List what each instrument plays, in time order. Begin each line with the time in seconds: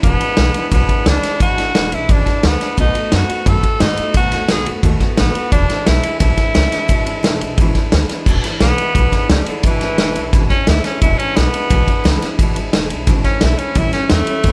0.03 upright bass E1, steel-string acoustic guitar E2 B2 E3 G#3 D4 E4, tenor saxophone B3, kick, ride
0.21 steel-string acoustic guitar G#3 D4 E4, ride
0.25 steel-string acoustic guitar E3
0.37 upright bass B1, steel-string acoustic guitar E3 G#3 D4, snare, ride
0.41 steel-string acoustic guitar E4
0.54 steel-string acoustic guitar G#3 D4 E4, muted upright bass stroke, ride
0.58 steel-string acoustic guitar E3
0.71 upright bass B1, steel-string acoustic guitar E2 B2 E3 G#3 D4 E4, tenor saxophone B3, kick, ride
0.89 steel-string acoustic guitar E3 G#3 D4 E4, kick, ride
1.06 upright bass C#2, steel-string acoustic guitar E3 G#3 D4, tenor saxophone D4, snare, ride
1.11 steel-string acoustic guitar E4
1.23 steel-string acoustic guitar E3 G#3 D4 E4, muted upright bass stroke, snare, ride
1.40 upright bass E1, steel-string acoustic guitar E2 B2 E3 G#3 D4 E4, tenor saxophone F#4, kick, ride
1.58 upright bass G#1, steel-string acoustic guitar E3 G#3 D4 E4, snare, ride
1.75 upright bass E1, steel-string acoustic guitar E3 G#3 D4 E4, snare, ride
1.92 upright bass B1, steel-string acoustic guitar G#3 D4 E4, tenor saxophone E4, ride
1.96 steel-string acoustic guitar E3
2.09 upright bass G#1, steel-string acoustic guitar E2 B2 E3 G#3 D4 E4, tenor saxophone D4, kick, ride
2.26 steel-string acoustic guitar E3 G#3 D4 E4, kick, snare, ride
2.43 upright bass D2, steel-string acoustic guitar E3 G#3 D4 E4, tenor saxophone B3, snare, ride
2.60 steel-string acoustic guitar E3 G#3 D4 E4, snare, ride
2.77 upright bass B1, steel-string acoustic guitar B2 D#3 A3 B3 F#4, tenor saxophone D#4, kick, ride
2.94 steel-string acoustic guitar A3 B3 F#4, muted upright bass stroke, ride
3.12 upright bass F#2, steel-string acoustic guitar D#3 A3 B3 F#4, tenor saxophone F#4, snare, ride
3.29 steel-string acoustic guitar A3 B3 F#4, muted upright bass stroke, ride
3.46 upright bass F#2, steel-string acoustic guitar B2 D#3 A3 B3 F#4, tenor saxophone A4, kick, ride
3.63 steel-string acoustic guitar A3 B3 F#4, kick, ride
3.80 upright bass G#2, steel-string acoustic guitar D#3 A3 B3 F#4, tenor saxophone D#4, snare, ride
3.97 steel-string acoustic guitar B3 F#4, muted upright bass stroke, ride
4.03 steel-string acoustic guitar A3
4.14 upright bass B1, steel-string acoustic guitar B2 D#3 A3 B3, tenor saxophone F#4, kick, ride
4.18 steel-string acoustic guitar F#4
4.32 upright bass D#2, steel-string acoustic guitar B3 F#4, snare, ride
4.36 steel-string acoustic guitar A3
4.48 upright bass B1, steel-string acoustic guitar D#3 A3 B3, tenor saxophone G#4, snare, ride
4.53 steel-string acoustic guitar F#4
4.66 upright bass F#2, steel-string acoustic guitar B3 F#4, ride
4.71 steel-string acoustic guitar A3
4.83 upright bass D#2, steel-string acoustic guitar B2 D#3 A3 B3 F#4, kick, ride
5.00 steel-string acoustic guitar A3 B3 F#4, muted upright bass stroke, kick, snare, ride
5.17 upright bass A1, steel-string acoustic guitar D#3 A3 B3, tenor saxophone B3, snare, ride
5.22 steel-string acoustic guitar F#4
5.35 steel-string acoustic guitar B3 F#4, ride
5.40 steel-string acoustic guitar A3
5.52 upright bass E1, steel-string acoustic guitar E2 B2 E3 G#3 D4 E4, tenor saxophone D4, kick, ride
5.70 steel-string acoustic guitar G#3 D4 E4, muted upright bass stroke, snare, ride
5.74 steel-string acoustic guitar E3
5.86 upright bass B1, steel-string acoustic guitar E3 G#3 D4 E4, tenor saxophone E4, snare, ride
6.03 steel-string acoustic guitar E3 G#3 D4 E4, muted upright bass stroke, ride
6.19 upright bass B1, steel-string acoustic guitar E2 B2 E3 G#3 D4 E4, tenor saxophone E4, kick, snare, ride
6.37 steel-string acoustic guitar E3 G#3 D4 E4, muted upright bass stroke, kick, snare, ride
6.54 upright bass C#2, steel-string acoustic guitar E3 G#3 D4 E4, snare, ride
6.72 steel-string acoustic guitar E3 G#3 D4 E4, muted upright bass stroke, snare, ride
6.88 upright bass E1, steel-string acoustic guitar E2 B2 E3 G#3 D4 E4, kick, ride
7.06 upright bass G#1, steel-string acoustic guitar E3 G#3 D4 E4, ride
7.23 upright bass E1, steel-string acoustic guitar E3 G#3 D4 E4, snare, ride
7.41 upright bass B1, steel-string acoustic guitar E3 G#3 D4 E4, ride
7.58 upright bass G#1, steel-string acoustic guitar E2 B2 E3 G#3 D4, kick, ride
7.62 steel-string acoustic guitar E4
7.75 steel-string acoustic guitar G#3 D4 E4, kick, snare, ride
7.80 steel-string acoustic guitar E3
7.92 upright bass D2, steel-string acoustic guitar E3 G#3 D4, snare, ride
7.96 steel-string acoustic guitar E4
8.09 steel-string acoustic guitar G#3 D4 E4, muted upright bass stroke, snare, ride
8.15 steel-string acoustic guitar E3
8.26 upright bass E1, steel-string acoustic guitar E2 B2 E3 G#3 D4 E4, kick, crash
8.43 steel-string acoustic guitar G#3 D4 E4, muted upright bass stroke, snare, ride
8.48 steel-string acoustic guitar E3
8.60 upright bass B1, steel-string acoustic guitar E3 G#3, tenor saxophone B3, snare, ride
8.65 steel-string acoustic guitar D4 E4
8.78 steel-string acoustic guitar G#3 D4 E4, ride
8.83 steel-string acoustic guitar E3
8.95 upright bass B1, steel-string acoustic guitar E2 B2 E3 G#3 D4, kick, ride
8.99 steel-string acoustic guitar E4
9.12 steel-string acoustic guitar G#3 D4 E4, muted upright bass stroke, kick, snare, ride
9.17 steel-string acoustic guitar E3
9.30 upright bass C#2, steel-string acoustic guitar E3 G#3, tenor saxophone G3, snare, ride
9.34 steel-string acoustic guitar D4 E4
9.46 tenor saxophone D3, steel-string acoustic guitar D4 E4, muted upright bass stroke, ride
9.51 steel-string acoustic guitar E3 G#3
9.63 upright bass E1, steel-string acoustic guitar E2 B2 E3 G#3 D4 E4, tenor saxophone E3, kick, ride
9.81 upright bass G#1, steel-string acoustic guitar G#3 D4 E4, snare, ride
9.85 steel-string acoustic guitar E3
9.98 upright bass E1, steel-string acoustic guitar E3 G#3 D4, snare, ride
10.03 steel-string acoustic guitar E4
10.16 upright bass B1, steel-string acoustic guitar G#3 D4 E4, ride
10.20 steel-string acoustic guitar E3
10.33 upright bass G#1, steel-string acoustic guitar E2 B2 E3 G#3 D4 E4, kick, snare, ride
10.50 steel-string acoustic guitar G#3 D4 E4, tenor saxophone C#4, kick, snare, ride
10.55 steel-string acoustic guitar E3
10.67 upright bass D2, steel-string acoustic guitar E3 G#3 D4, tenor saxophone E4, snare, ride
10.72 steel-string acoustic guitar E4
10.84 steel-string acoustic guitar G#3 D4 E4, tenor saxophone C#4, muted upright bass stroke, snare, ride
10.89 steel-string acoustic guitar E3
11.02 upright bass E1, steel-string acoustic guitar E2 B2 E3 G#3 D4 E4, tenor saxophone E4, kick, ride
11.18 steel-string acoustic guitar G#3 D4 E4, tenor saxophone C#4, ride
11.23 steel-string acoustic guitar E3
11.36 upright bass B1, steel-string acoustic guitar E3 G#3 D4 E4, tenor saxophone B3, snare, ride
11.54 steel-string acoustic guitar E3 G#3 D4 E4, ride
11.70 upright bass B1, steel-string acoustic guitar E2 B2 E3 G#3 D4 E4, kick, ride
11.88 steel-string acoustic guitar E3 G#3 D4 E4, muted upright bass stroke, kick, ride
12.04 upright bass C#2, steel-string acoustic guitar E3 G#3 D4 E4, snare, ride
12.22 steel-string acoustic guitar E3 G#3 D4 E4, snare, ride
12.39 upright bass E1, steel-string acoustic guitar E2 B2 E3 G#3 D4 E4, kick, ride
12.56 upright bass G#1, steel-string acoustic guitar E3 G#3 D4 E4, ride
12.73 upright bass E1, steel-string acoustic guitar E3 G#3 D4 E4, snare, ride
12.90 upright bass B1, steel-string acoustic guitar G#3 D4 E4, ride
12.95 steel-string acoustic guitar E3
13.07 upright bass G#1, steel-string acoustic guitar E2 B2 E3 G#3 D4 E4, kick, snare, ride
13.24 steel-string acoustic guitar G#3 D4 E4, tenor saxophone C#4, kick, snare, ride
13.28 steel-string acoustic guitar E3
13.41 upright bass B1, steel-string acoustic guitar E3 G#3, tenor saxophone E4, snare, ride
13.45 steel-string acoustic guitar D4 E4
13.58 steel-string acoustic guitar G#3 D4 E4, tenor saxophone C#4, ride
13.63 steel-string acoustic guitar E3
13.75 upright bass A1, steel-string acoustic guitar A2 E3 G3 C#4 E4, tenor saxophone E4, kick, ride
13.93 tenor saxophone C#4, steel-string acoustic guitar C#4 E4, muted upright bass stroke, snare, ride
13.97 steel-string acoustic guitar G3
14.10 upright bass E2, steel-string acoustic guitar E3 G3 C#4, tenor saxophone A3, snare, ride
14.14 steel-string acoustic guitar E4
14.27 steel-string acoustic guitar G3 C#4 E4, ride
14.44 upright bass E2, steel-string acoustic guitar A2 E3, kick, snare, ride
14.48 steel-string acoustic guitar G3 C#4 E4